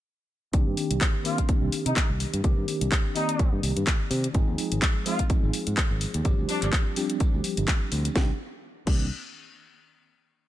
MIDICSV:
0, 0, Header, 1, 6, 480
1, 0, Start_track
1, 0, Key_signature, -3, "minor"
1, 0, Tempo, 476190
1, 540, Time_signature, 4, 2, 24, 8
1, 10566, End_track
2, 0, Start_track
2, 0, Title_t, "Horn section"
2, 0, Program_c, 0, 61
2, 1258, Note_on_c, 0, 65, 85
2, 1434, Note_off_c, 0, 65, 0
2, 1874, Note_on_c, 0, 63, 82
2, 1942, Note_off_c, 0, 63, 0
2, 1976, Note_on_c, 0, 63, 69
2, 2064, Note_off_c, 0, 63, 0
2, 3180, Note_on_c, 0, 63, 86
2, 3555, Note_off_c, 0, 63, 0
2, 5101, Note_on_c, 0, 65, 86
2, 5276, Note_off_c, 0, 65, 0
2, 6538, Note_on_c, 0, 62, 85
2, 6625, Note_off_c, 0, 62, 0
2, 6677, Note_on_c, 0, 62, 74
2, 6744, Note_off_c, 0, 62, 0
2, 10566, End_track
3, 0, Start_track
3, 0, Title_t, "Tine electric piano"
3, 0, Program_c, 1, 4
3, 532, Note_on_c, 1, 51, 85
3, 536, Note_on_c, 1, 58, 79
3, 540, Note_on_c, 1, 60, 80
3, 543, Note_on_c, 1, 62, 76
3, 548, Note_on_c, 1, 67, 95
3, 1231, Note_off_c, 1, 51, 0
3, 1233, Note_off_c, 1, 58, 0
3, 1235, Note_off_c, 1, 60, 0
3, 1236, Note_off_c, 1, 62, 0
3, 1239, Note_off_c, 1, 67, 0
3, 1250, Note_on_c, 1, 51, 69
3, 1256, Note_on_c, 1, 58, 62
3, 1259, Note_on_c, 1, 60, 62
3, 1262, Note_on_c, 1, 62, 62
3, 1268, Note_on_c, 1, 67, 73
3, 2430, Note_off_c, 1, 51, 0
3, 2433, Note_off_c, 1, 58, 0
3, 2434, Note_off_c, 1, 60, 0
3, 2436, Note_off_c, 1, 62, 0
3, 2439, Note_off_c, 1, 67, 0
3, 2451, Note_on_c, 1, 51, 78
3, 2456, Note_on_c, 1, 58, 73
3, 2459, Note_on_c, 1, 60, 71
3, 2464, Note_on_c, 1, 62, 72
3, 2467, Note_on_c, 1, 67, 86
3, 3151, Note_off_c, 1, 51, 0
3, 3153, Note_off_c, 1, 58, 0
3, 3155, Note_off_c, 1, 60, 0
3, 3157, Note_off_c, 1, 62, 0
3, 3158, Note_off_c, 1, 67, 0
3, 3171, Note_on_c, 1, 51, 68
3, 3174, Note_on_c, 1, 58, 62
3, 3180, Note_on_c, 1, 60, 63
3, 3183, Note_on_c, 1, 74, 62
3, 3187, Note_on_c, 1, 67, 75
3, 4350, Note_off_c, 1, 51, 0
3, 4352, Note_off_c, 1, 58, 0
3, 4355, Note_off_c, 1, 60, 0
3, 4357, Note_off_c, 1, 74, 0
3, 4359, Note_off_c, 1, 67, 0
3, 4370, Note_on_c, 1, 53, 91
3, 4374, Note_on_c, 1, 56, 83
3, 4379, Note_on_c, 1, 60, 83
3, 4382, Note_on_c, 1, 63, 83
3, 4387, Note_on_c, 1, 68, 98
3, 5070, Note_off_c, 1, 53, 0
3, 5072, Note_off_c, 1, 56, 0
3, 5074, Note_off_c, 1, 60, 0
3, 5076, Note_off_c, 1, 63, 0
3, 5078, Note_off_c, 1, 68, 0
3, 5094, Note_on_c, 1, 53, 72
3, 5097, Note_on_c, 1, 56, 66
3, 5102, Note_on_c, 1, 60, 65
3, 5105, Note_on_c, 1, 63, 66
3, 5109, Note_on_c, 1, 68, 79
3, 6272, Note_off_c, 1, 53, 0
3, 6273, Note_off_c, 1, 56, 0
3, 6276, Note_off_c, 1, 60, 0
3, 6278, Note_off_c, 1, 63, 0
3, 6279, Note_off_c, 1, 68, 0
3, 6292, Note_on_c, 1, 53, 83
3, 6296, Note_on_c, 1, 55, 76
3, 6300, Note_on_c, 1, 60, 73
3, 6304, Note_on_c, 1, 62, 75
3, 6309, Note_on_c, 1, 67, 91
3, 6991, Note_off_c, 1, 53, 0
3, 6993, Note_off_c, 1, 55, 0
3, 6995, Note_off_c, 1, 60, 0
3, 6997, Note_off_c, 1, 62, 0
3, 7000, Note_off_c, 1, 67, 0
3, 7013, Note_on_c, 1, 53, 70
3, 7017, Note_on_c, 1, 55, 67
3, 7022, Note_on_c, 1, 60, 67
3, 7027, Note_on_c, 1, 62, 67
3, 7029, Note_on_c, 1, 67, 79
3, 8192, Note_off_c, 1, 53, 0
3, 8194, Note_off_c, 1, 55, 0
3, 8196, Note_off_c, 1, 60, 0
3, 8198, Note_off_c, 1, 62, 0
3, 8200, Note_off_c, 1, 67, 0
3, 8210, Note_on_c, 1, 51, 80
3, 8216, Note_on_c, 1, 58, 76
3, 8222, Note_on_c, 1, 60, 77
3, 8227, Note_on_c, 1, 62, 74
3, 8233, Note_on_c, 1, 67, 89
3, 8360, Note_off_c, 1, 51, 0
3, 8363, Note_off_c, 1, 58, 0
3, 8366, Note_off_c, 1, 60, 0
3, 8369, Note_off_c, 1, 62, 0
3, 8372, Note_off_c, 1, 67, 0
3, 8931, Note_on_c, 1, 51, 80
3, 8937, Note_on_c, 1, 58, 75
3, 8944, Note_on_c, 1, 60, 76
3, 8949, Note_on_c, 1, 62, 75
3, 8955, Note_on_c, 1, 67, 90
3, 9119, Note_off_c, 1, 51, 0
3, 9122, Note_off_c, 1, 58, 0
3, 9127, Note_off_c, 1, 60, 0
3, 9129, Note_off_c, 1, 62, 0
3, 9132, Note_off_c, 1, 67, 0
3, 10566, End_track
4, 0, Start_track
4, 0, Title_t, "Fingered electric bass"
4, 0, Program_c, 2, 33
4, 539, Note_on_c, 2, 36, 87
4, 622, Note_off_c, 2, 36, 0
4, 672, Note_on_c, 2, 43, 81
4, 738, Note_off_c, 2, 43, 0
4, 912, Note_on_c, 2, 36, 81
4, 978, Note_off_c, 2, 36, 0
4, 1630, Note_on_c, 2, 36, 75
4, 1697, Note_off_c, 2, 36, 0
4, 1870, Note_on_c, 2, 48, 74
4, 1937, Note_off_c, 2, 48, 0
4, 2111, Note_on_c, 2, 36, 86
4, 2249, Note_off_c, 2, 36, 0
4, 2352, Note_on_c, 2, 43, 82
4, 2418, Note_off_c, 2, 43, 0
4, 2460, Note_on_c, 2, 36, 92
4, 2543, Note_off_c, 2, 36, 0
4, 2593, Note_on_c, 2, 43, 78
4, 2659, Note_off_c, 2, 43, 0
4, 2833, Note_on_c, 2, 36, 82
4, 2899, Note_off_c, 2, 36, 0
4, 3554, Note_on_c, 2, 43, 86
4, 3619, Note_off_c, 2, 43, 0
4, 3660, Note_on_c, 2, 36, 90
4, 3743, Note_off_c, 2, 36, 0
4, 3794, Note_on_c, 2, 43, 91
4, 3859, Note_off_c, 2, 43, 0
4, 4138, Note_on_c, 2, 48, 96
4, 4297, Note_off_c, 2, 48, 0
4, 4380, Note_on_c, 2, 32, 96
4, 4463, Note_off_c, 2, 32, 0
4, 4513, Note_on_c, 2, 39, 82
4, 4579, Note_off_c, 2, 39, 0
4, 4755, Note_on_c, 2, 32, 86
4, 4820, Note_off_c, 2, 32, 0
4, 5473, Note_on_c, 2, 32, 79
4, 5539, Note_off_c, 2, 32, 0
4, 5715, Note_on_c, 2, 44, 79
4, 5780, Note_off_c, 2, 44, 0
4, 5953, Note_on_c, 2, 32, 87
4, 6090, Note_off_c, 2, 32, 0
4, 6193, Note_on_c, 2, 39, 83
4, 6259, Note_off_c, 2, 39, 0
4, 6301, Note_on_c, 2, 31, 96
4, 6383, Note_off_c, 2, 31, 0
4, 6434, Note_on_c, 2, 38, 82
4, 6499, Note_off_c, 2, 38, 0
4, 6676, Note_on_c, 2, 31, 84
4, 6740, Note_off_c, 2, 31, 0
4, 7395, Note_on_c, 2, 38, 88
4, 7460, Note_off_c, 2, 38, 0
4, 7635, Note_on_c, 2, 31, 88
4, 7700, Note_off_c, 2, 31, 0
4, 7982, Note_on_c, 2, 38, 94
4, 8140, Note_off_c, 2, 38, 0
4, 8221, Note_on_c, 2, 36, 91
4, 8366, Note_off_c, 2, 36, 0
4, 8939, Note_on_c, 2, 36, 90
4, 9163, Note_off_c, 2, 36, 0
4, 10566, End_track
5, 0, Start_track
5, 0, Title_t, "Muted fingered electric bass strokes"
5, 1499, Note_on_c, 9, 29, 40
5, 1600, Note_off_c, 9, 29, 0
5, 5340, Note_on_c, 9, 29, 43
5, 5441, Note_off_c, 9, 29, 0
5, 10566, End_track
6, 0, Start_track
6, 0, Title_t, "Drums"
6, 539, Note_on_c, 9, 42, 51
6, 540, Note_on_c, 9, 36, 106
6, 639, Note_off_c, 9, 42, 0
6, 641, Note_off_c, 9, 36, 0
6, 671, Note_on_c, 9, 54, 26
6, 772, Note_off_c, 9, 54, 0
6, 779, Note_on_c, 9, 46, 94
6, 787, Note_on_c, 9, 54, 76
6, 880, Note_off_c, 9, 46, 0
6, 888, Note_off_c, 9, 54, 0
6, 913, Note_on_c, 9, 42, 63
6, 914, Note_on_c, 9, 54, 36
6, 1014, Note_off_c, 9, 42, 0
6, 1015, Note_off_c, 9, 54, 0
6, 1019, Note_on_c, 9, 42, 50
6, 1020, Note_on_c, 9, 36, 110
6, 1020, Note_on_c, 9, 39, 115
6, 1119, Note_off_c, 9, 42, 0
6, 1120, Note_off_c, 9, 39, 0
6, 1121, Note_off_c, 9, 36, 0
6, 1258, Note_on_c, 9, 54, 90
6, 1260, Note_on_c, 9, 46, 98
6, 1359, Note_off_c, 9, 54, 0
6, 1361, Note_off_c, 9, 46, 0
6, 1394, Note_on_c, 9, 42, 63
6, 1395, Note_on_c, 9, 36, 58
6, 1495, Note_off_c, 9, 36, 0
6, 1495, Note_off_c, 9, 42, 0
6, 1499, Note_on_c, 9, 42, 51
6, 1500, Note_on_c, 9, 36, 108
6, 1599, Note_off_c, 9, 42, 0
6, 1601, Note_off_c, 9, 36, 0
6, 1637, Note_on_c, 9, 54, 25
6, 1738, Note_off_c, 9, 54, 0
6, 1738, Note_on_c, 9, 46, 98
6, 1739, Note_on_c, 9, 54, 77
6, 1839, Note_off_c, 9, 46, 0
6, 1840, Note_off_c, 9, 54, 0
6, 1865, Note_on_c, 9, 54, 33
6, 1875, Note_on_c, 9, 42, 64
6, 1966, Note_off_c, 9, 54, 0
6, 1976, Note_off_c, 9, 42, 0
6, 1980, Note_on_c, 9, 36, 108
6, 1980, Note_on_c, 9, 42, 52
6, 1981, Note_on_c, 9, 39, 115
6, 2081, Note_off_c, 9, 36, 0
6, 2081, Note_off_c, 9, 42, 0
6, 2082, Note_off_c, 9, 39, 0
6, 2217, Note_on_c, 9, 54, 79
6, 2219, Note_on_c, 9, 46, 97
6, 2318, Note_off_c, 9, 54, 0
6, 2320, Note_off_c, 9, 46, 0
6, 2354, Note_on_c, 9, 42, 64
6, 2359, Note_on_c, 9, 54, 40
6, 2455, Note_off_c, 9, 42, 0
6, 2460, Note_off_c, 9, 54, 0
6, 2460, Note_on_c, 9, 42, 49
6, 2461, Note_on_c, 9, 36, 115
6, 2561, Note_off_c, 9, 36, 0
6, 2561, Note_off_c, 9, 42, 0
6, 2589, Note_on_c, 9, 54, 27
6, 2690, Note_off_c, 9, 54, 0
6, 2701, Note_on_c, 9, 46, 101
6, 2701, Note_on_c, 9, 54, 86
6, 2801, Note_off_c, 9, 54, 0
6, 2802, Note_off_c, 9, 46, 0
6, 2834, Note_on_c, 9, 54, 39
6, 2836, Note_on_c, 9, 42, 63
6, 2935, Note_off_c, 9, 54, 0
6, 2937, Note_off_c, 9, 42, 0
6, 2941, Note_on_c, 9, 36, 120
6, 2941, Note_on_c, 9, 42, 49
6, 2942, Note_on_c, 9, 39, 120
6, 3042, Note_off_c, 9, 36, 0
6, 3042, Note_off_c, 9, 42, 0
6, 3043, Note_off_c, 9, 39, 0
6, 3180, Note_on_c, 9, 54, 93
6, 3181, Note_on_c, 9, 46, 103
6, 3281, Note_off_c, 9, 54, 0
6, 3282, Note_off_c, 9, 46, 0
6, 3312, Note_on_c, 9, 54, 39
6, 3315, Note_on_c, 9, 42, 64
6, 3412, Note_off_c, 9, 54, 0
6, 3416, Note_off_c, 9, 42, 0
6, 3421, Note_on_c, 9, 36, 115
6, 3421, Note_on_c, 9, 42, 49
6, 3429, Note_on_c, 9, 54, 52
6, 3522, Note_off_c, 9, 36, 0
6, 3522, Note_off_c, 9, 42, 0
6, 3530, Note_off_c, 9, 54, 0
6, 3557, Note_on_c, 9, 54, 26
6, 3658, Note_off_c, 9, 54, 0
6, 3661, Note_on_c, 9, 54, 82
6, 3662, Note_on_c, 9, 46, 104
6, 3762, Note_off_c, 9, 54, 0
6, 3763, Note_off_c, 9, 46, 0
6, 3796, Note_on_c, 9, 42, 61
6, 3798, Note_on_c, 9, 54, 39
6, 3897, Note_off_c, 9, 42, 0
6, 3899, Note_off_c, 9, 54, 0
6, 3901, Note_on_c, 9, 42, 50
6, 3902, Note_on_c, 9, 36, 112
6, 3902, Note_on_c, 9, 39, 117
6, 4002, Note_off_c, 9, 42, 0
6, 4003, Note_off_c, 9, 36, 0
6, 4003, Note_off_c, 9, 39, 0
6, 4137, Note_on_c, 9, 54, 88
6, 4140, Note_on_c, 9, 46, 106
6, 4238, Note_off_c, 9, 54, 0
6, 4241, Note_off_c, 9, 46, 0
6, 4270, Note_on_c, 9, 54, 41
6, 4274, Note_on_c, 9, 42, 62
6, 4370, Note_off_c, 9, 54, 0
6, 4375, Note_off_c, 9, 42, 0
6, 4379, Note_on_c, 9, 42, 50
6, 4381, Note_on_c, 9, 36, 117
6, 4383, Note_on_c, 9, 54, 53
6, 4480, Note_off_c, 9, 42, 0
6, 4482, Note_off_c, 9, 36, 0
6, 4484, Note_off_c, 9, 54, 0
6, 4511, Note_on_c, 9, 54, 23
6, 4612, Note_off_c, 9, 54, 0
6, 4620, Note_on_c, 9, 46, 103
6, 4628, Note_on_c, 9, 54, 94
6, 4720, Note_off_c, 9, 46, 0
6, 4728, Note_off_c, 9, 54, 0
6, 4754, Note_on_c, 9, 42, 62
6, 4759, Note_on_c, 9, 54, 39
6, 4855, Note_off_c, 9, 42, 0
6, 4860, Note_off_c, 9, 54, 0
6, 4860, Note_on_c, 9, 42, 50
6, 4861, Note_on_c, 9, 36, 120
6, 4861, Note_on_c, 9, 39, 118
6, 4961, Note_off_c, 9, 42, 0
6, 4962, Note_off_c, 9, 36, 0
6, 4962, Note_off_c, 9, 39, 0
6, 4999, Note_on_c, 9, 54, 25
6, 5097, Note_off_c, 9, 54, 0
6, 5097, Note_on_c, 9, 54, 97
6, 5099, Note_on_c, 9, 46, 111
6, 5198, Note_off_c, 9, 54, 0
6, 5200, Note_off_c, 9, 46, 0
6, 5233, Note_on_c, 9, 42, 62
6, 5235, Note_on_c, 9, 36, 63
6, 5246, Note_on_c, 9, 54, 41
6, 5334, Note_off_c, 9, 42, 0
6, 5336, Note_off_c, 9, 36, 0
6, 5340, Note_on_c, 9, 42, 48
6, 5341, Note_on_c, 9, 36, 120
6, 5347, Note_off_c, 9, 54, 0
6, 5347, Note_on_c, 9, 54, 51
6, 5441, Note_off_c, 9, 42, 0
6, 5442, Note_off_c, 9, 36, 0
6, 5448, Note_off_c, 9, 54, 0
6, 5481, Note_on_c, 9, 54, 25
6, 5579, Note_on_c, 9, 46, 105
6, 5581, Note_off_c, 9, 54, 0
6, 5586, Note_on_c, 9, 54, 87
6, 5680, Note_off_c, 9, 46, 0
6, 5687, Note_off_c, 9, 54, 0
6, 5713, Note_on_c, 9, 42, 61
6, 5718, Note_on_c, 9, 54, 36
6, 5814, Note_off_c, 9, 42, 0
6, 5817, Note_on_c, 9, 42, 48
6, 5818, Note_on_c, 9, 39, 120
6, 5819, Note_off_c, 9, 54, 0
6, 5821, Note_on_c, 9, 36, 119
6, 5918, Note_off_c, 9, 42, 0
6, 5919, Note_off_c, 9, 39, 0
6, 5922, Note_off_c, 9, 36, 0
6, 5957, Note_on_c, 9, 54, 26
6, 6052, Note_off_c, 9, 54, 0
6, 6052, Note_on_c, 9, 54, 96
6, 6058, Note_on_c, 9, 46, 108
6, 6153, Note_off_c, 9, 54, 0
6, 6158, Note_off_c, 9, 46, 0
6, 6191, Note_on_c, 9, 54, 43
6, 6192, Note_on_c, 9, 42, 62
6, 6292, Note_off_c, 9, 54, 0
6, 6293, Note_off_c, 9, 42, 0
6, 6299, Note_on_c, 9, 42, 49
6, 6301, Note_on_c, 9, 36, 116
6, 6310, Note_on_c, 9, 54, 56
6, 6400, Note_off_c, 9, 42, 0
6, 6402, Note_off_c, 9, 36, 0
6, 6411, Note_off_c, 9, 54, 0
6, 6438, Note_on_c, 9, 54, 24
6, 6539, Note_off_c, 9, 54, 0
6, 6539, Note_on_c, 9, 46, 102
6, 6543, Note_on_c, 9, 54, 94
6, 6640, Note_off_c, 9, 46, 0
6, 6644, Note_off_c, 9, 54, 0
6, 6674, Note_on_c, 9, 42, 61
6, 6675, Note_on_c, 9, 39, 36
6, 6676, Note_on_c, 9, 54, 40
6, 6775, Note_off_c, 9, 42, 0
6, 6776, Note_off_c, 9, 39, 0
6, 6777, Note_off_c, 9, 54, 0
6, 6781, Note_on_c, 9, 42, 49
6, 6782, Note_on_c, 9, 36, 122
6, 6782, Note_on_c, 9, 39, 115
6, 6783, Note_on_c, 9, 54, 53
6, 6882, Note_off_c, 9, 36, 0
6, 6882, Note_off_c, 9, 42, 0
6, 6883, Note_off_c, 9, 39, 0
6, 6884, Note_off_c, 9, 54, 0
6, 6902, Note_on_c, 9, 54, 25
6, 7003, Note_off_c, 9, 54, 0
6, 7020, Note_on_c, 9, 46, 111
6, 7027, Note_on_c, 9, 54, 97
6, 7120, Note_off_c, 9, 46, 0
6, 7128, Note_off_c, 9, 54, 0
6, 7153, Note_on_c, 9, 42, 60
6, 7153, Note_on_c, 9, 54, 40
6, 7253, Note_off_c, 9, 42, 0
6, 7254, Note_off_c, 9, 54, 0
6, 7256, Note_on_c, 9, 54, 46
6, 7260, Note_on_c, 9, 42, 49
6, 7261, Note_on_c, 9, 36, 120
6, 7357, Note_off_c, 9, 54, 0
6, 7360, Note_off_c, 9, 42, 0
6, 7362, Note_off_c, 9, 36, 0
6, 7399, Note_on_c, 9, 54, 28
6, 7500, Note_off_c, 9, 54, 0
6, 7500, Note_on_c, 9, 46, 108
6, 7508, Note_on_c, 9, 54, 89
6, 7601, Note_off_c, 9, 46, 0
6, 7609, Note_off_c, 9, 54, 0
6, 7631, Note_on_c, 9, 54, 41
6, 7634, Note_on_c, 9, 42, 58
6, 7731, Note_off_c, 9, 54, 0
6, 7735, Note_off_c, 9, 42, 0
6, 7740, Note_on_c, 9, 42, 48
6, 7741, Note_on_c, 9, 39, 114
6, 7742, Note_on_c, 9, 36, 115
6, 7841, Note_off_c, 9, 42, 0
6, 7842, Note_off_c, 9, 39, 0
6, 7843, Note_off_c, 9, 36, 0
6, 7874, Note_on_c, 9, 54, 27
6, 7975, Note_off_c, 9, 54, 0
6, 7978, Note_on_c, 9, 54, 96
6, 7980, Note_on_c, 9, 46, 108
6, 8079, Note_off_c, 9, 54, 0
6, 8081, Note_off_c, 9, 46, 0
6, 8116, Note_on_c, 9, 42, 61
6, 8120, Note_on_c, 9, 54, 44
6, 8217, Note_off_c, 9, 42, 0
6, 8220, Note_on_c, 9, 38, 86
6, 8221, Note_off_c, 9, 54, 0
6, 8222, Note_on_c, 9, 36, 114
6, 8321, Note_off_c, 9, 38, 0
6, 8322, Note_off_c, 9, 36, 0
6, 8940, Note_on_c, 9, 49, 88
6, 8941, Note_on_c, 9, 36, 108
6, 9041, Note_off_c, 9, 49, 0
6, 9042, Note_off_c, 9, 36, 0
6, 10566, End_track
0, 0, End_of_file